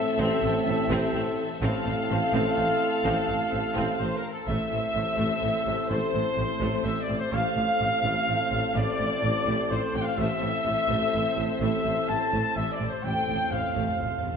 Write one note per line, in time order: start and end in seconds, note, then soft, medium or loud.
0.00 1.46 A2 medium
0.00 1.46 A3 loud
0.00 1.44 C4 loud
0.00 1.44 A4 medium
0.00 1.58 A4 medium
0.00 1.45 E5 loud
0.00 1.62 E5 loud
0.19 0.28 A1 loud
0.19 0.27 A2 loud
0.19 0.41 C4 loud
0.42 0.52 A1 medium
0.42 0.51 A1 medium
0.42 0.51 A2 medium
0.42 0.52 C4 medium
0.66 0.76 A1 medium
0.66 0.75 A1 medium
0.66 0.75 A2 medium
0.66 0.76 C4 medium
0.90 0.99 A1 loud
0.90 0.98 A1 loud
0.90 1.00 A2 loud
0.90 1.13 C4 loud
1.14 1.22 A1 medium
1.14 1.24 A1 medium
1.14 1.23 A2 medium
1.14 1.22 C4 medium
1.61 1.71 A1 loud
1.61 1.70 A1 loud
1.61 1.71 A2 loud
1.61 4.20 A2 medium
1.61 4.20 A3 medium
1.61 4.19 C4 loud
1.61 1.84 C4 medium
1.61 4.19 A4 medium
1.61 3.96 A4 medium
1.61 3.96 F5 loud
1.61 4.24 F5 loud
1.85 1.95 A1 medium
1.85 1.94 A1 medium
1.85 1.94 A2 medium
1.85 1.94 C4 medium
2.10 2.19 A1 medium
2.10 2.18 A2 medium
2.10 2.19 C4 medium
2.33 2.43 A1 loud
2.33 2.42 A1 loud
2.33 2.42 A2 medium
2.33 2.55 C4 medium
2.57 2.66 A1 medium
2.57 2.65 A2 medium
2.57 2.65 C4 medium
3.05 3.14 A1 loud
3.05 3.13 A1 medium
3.05 3.13 A2 medium
3.05 3.27 C4 medium
3.28 3.36 A1 medium
3.28 3.38 A1 medium
3.28 3.37 A2 medium
3.28 3.36 C4 soft
3.52 3.62 A1 medium
3.52 3.61 A1 medium
3.52 3.61 A2 medium
3.52 3.60 C4 medium
3.75 3.85 A1 medium
3.75 3.84 A1 medium
3.75 3.85 A2 medium
3.75 3.97 C4 medium
3.99 4.09 A1 medium
3.99 4.08 A1 medium
3.99 4.09 A2 medium
3.99 4.08 C4 medium
3.99 4.14 C5 medium
3.99 4.15 C5 medium
4.16 4.32 A#4 medium
4.32 4.47 A4 medium
4.32 4.48 A4 medium
4.46 4.57 A1 medium
4.46 4.56 A1 medium
4.46 4.56 A2 medium
4.46 7.29 A2 medium
4.46 4.69 A3 medium
4.46 7.30 A3 medium
4.46 7.30 C4 medium
4.46 7.29 A4 medium
4.46 7.28 C5 medium
4.46 5.90 E5 medium
4.46 5.88 E5 loud
4.70 4.80 A1 medium
4.70 4.80 A2 medium
4.70 4.78 E3 medium
4.95 5.04 A1 medium
4.95 5.03 A1 medium
4.95 5.03 A2 medium
4.95 5.03 C3 medium
5.18 5.28 A1 medium
5.18 5.27 A1 medium
5.18 5.27 A2 medium
5.18 5.40 A3 medium
5.42 5.52 A1 medium
5.42 5.51 A1 medium
5.42 5.51 A2 medium
5.42 5.50 E3 medium
5.66 5.76 A1 medium
5.66 5.75 A1 medium
5.66 5.75 A2 medium
5.66 5.75 C3 medium
5.89 5.99 A1 medium
5.89 5.98 A2 medium
5.89 6.12 A3 medium
5.89 6.83 C5 medium
6.14 6.22 A1 medium
6.14 6.24 A1 soft
6.14 6.22 A2 medium
6.14 6.23 E3 medium
6.37 6.47 A1 medium
6.37 6.46 A1 medium
6.37 6.45 A2 medium
6.37 6.46 C3 medium
6.60 6.69 A1 medium
6.60 6.71 A1 medium
6.60 6.68 A2 medium
6.60 6.83 A3 medium
6.83 6.92 A1 medium
6.83 6.95 A1 soft
6.83 6.92 A2 medium
6.83 6.94 E3 medium
6.83 7.00 E5 medium
6.83 7.01 E5 medium
7.01 7.17 D5 medium
7.08 7.19 A1 soft
7.08 7.18 A1 medium
7.08 7.16 A2 medium
7.08 7.18 C3 medium
7.18 7.33 C5 medium
7.18 7.34 C5 medium
7.32 7.42 A1 medium
7.32 7.41 A1 medium
7.32 7.40 A2 medium
7.32 10.16 A2 medium
7.32 7.56 A3 medium
7.32 10.15 A3 medium
7.32 10.15 C4 medium
7.32 10.15 A4 medium
7.32 10.16 C5 medium
7.32 8.73 F5 medium
7.32 8.76 F5 loud
7.56 7.66 A1 medium
7.56 7.65 A1 medium
7.56 7.64 A2 medium
7.56 7.65 F3 soft
7.80 7.90 A1 medium
7.80 7.89 A1 medium
7.80 7.88 A2 medium
7.80 7.89 C3 medium
8.04 8.14 A1 medium
8.04 8.12 A1 medium
8.04 8.12 A2 medium
8.04 8.27 A3 medium
8.27 8.37 A1 medium
8.27 8.37 A2 soft
8.27 8.38 F3 medium
8.51 8.61 A1 medium
8.51 8.60 A1 medium
8.51 8.60 A2 medium
8.51 8.59 C3 medium
8.75 8.85 A1 medium
8.75 8.84 A1 medium
8.75 8.83 A2 medium
8.75 8.98 A3 medium
8.75 9.69 D5 loud
8.75 9.71 D5 loud
8.99 9.07 A1 medium
8.99 9.09 A1 medium
8.99 9.07 A2 medium
8.99 9.08 F3 medium
9.23 9.33 A1 medium
9.23 9.32 A1 medium
9.23 9.31 A2 medium
9.23 9.31 C3 medium
9.46 9.56 A1 medium
9.46 9.55 A1 medium
9.46 9.55 A2 medium
9.46 9.69 A3 medium
9.70 9.80 A1 medium
9.70 9.79 A2 medium
9.70 9.78 F3 medium
9.70 9.95 C5 medium
9.94 10.04 A1 medium
9.94 10.03 A1 medium
9.94 10.03 A2 medium
9.94 10.03 C3 medium
9.94 10.03 G5 loud
9.94 10.03 G5 medium
10.03 10.19 F5 medium
10.17 10.28 A1 medium
10.17 10.27 A1 medium
10.17 10.25 A2 medium
10.17 12.88 A2 medium
10.17 10.41 A3 medium
10.17 12.88 A3 medium
10.17 12.86 C4 medium
10.17 13.00 A4 medium
10.17 12.86 A4 medium
10.17 13.00 C5 medium
10.17 11.44 E5 loud
10.17 11.60 E5 medium
10.41 10.52 A1 medium
10.41 10.51 A1 soft
10.41 10.49 A2 medium
10.41 10.50 E3 medium
10.65 10.75 A1 medium
10.65 10.73 A2 medium
10.65 10.74 C3 soft
10.89 10.99 A1 medium
10.89 10.98 A1 medium
10.89 10.97 A2 medium
10.89 11.12 A3 medium
11.13 11.21 A1 medium
11.13 11.23 A1 soft
11.13 11.21 A2 soft
11.13 11.21 E3 medium
11.37 11.47 A1 medium
11.37 11.46 A1 medium
11.37 11.45 A2 soft
11.37 11.45 C3 medium
11.61 11.70 A1 medium
11.61 11.69 A1 medium
11.61 11.70 A2 medium
11.61 11.84 A3 medium
11.61 12.08 E5 medium
11.84 11.94 A1 medium
11.84 11.93 A1 medium
11.84 11.93 A2 medium
11.84 11.93 E3 soft
12.08 12.18 A1 soft
12.08 12.17 A1 soft
12.08 12.17 A2 medium
12.08 12.17 C3 soft
12.08 12.56 A5 loud
12.08 12.57 A5 medium
12.32 12.42 A1 medium
12.32 12.41 A1 medium
12.32 12.40 A2 medium
12.32 12.55 A3 medium
12.56 12.66 A1 medium
12.56 12.65 A1 medium
12.56 12.64 A2 medium
12.56 12.65 E3 medium
12.56 12.72 E5 medium
12.56 12.73 E5 medium
12.72 12.88 D5 medium
12.80 12.90 A1 medium
12.80 12.89 A1 medium
12.80 12.88 A2 medium
12.80 12.89 C3 medium
12.89 13.04 C5 medium
12.89 13.05 C5 medium
13.03 13.14 A1 medium
13.03 13.13 A1 medium
13.03 13.11 F2 soft
13.03 13.12 A2 medium
13.03 14.37 A2 medium
13.03 14.37 A3 medium
13.03 13.27 A3 medium
13.03 14.37 C4 medium
13.03 14.37 A4 medium
13.03 14.37 C5 medium
13.03 13.52 G5 loud
13.03 13.52 G5 medium
13.12 13.19 F2 soft
13.20 13.26 F2 soft
13.27 13.38 A1 soft
13.27 13.37 A1 soft
13.27 13.34 F2 soft
13.27 13.35 A2 soft
13.27 13.37 F3 soft
13.35 13.42 F2 soft
13.43 13.49 F2 soft
13.50 13.62 A1 soft
13.50 13.61 A1 soft
13.50 13.57 F2 soft
13.50 13.59 A2 soft
13.50 13.60 C3 medium
13.50 14.37 F5 medium
13.58 13.64 F2 soft
13.66 13.72 F2 soft
13.73 13.86 A1 medium
13.73 13.79 F2 soft
13.73 13.83 A2 medium
13.73 13.97 A3 medium
13.78 13.86 A1 medium
13.78 13.87 F2 soft
13.88 13.93 F2 soft
13.95 14.01 F2 soft
13.99 14.10 A1 soft
13.99 14.09 A1 soft
13.99 14.08 A2 soft
13.99 14.07 F3 soft
14.03 14.09 F2 soft
14.10 14.17 F2 soft
14.18 14.25 F2 soft
14.24 14.34 A1 soft
14.24 14.32 A1 soft
14.24 14.32 F2 soft
14.24 14.32 A2 soft
14.24 14.32 C3 soft
14.33 14.37 F2 soft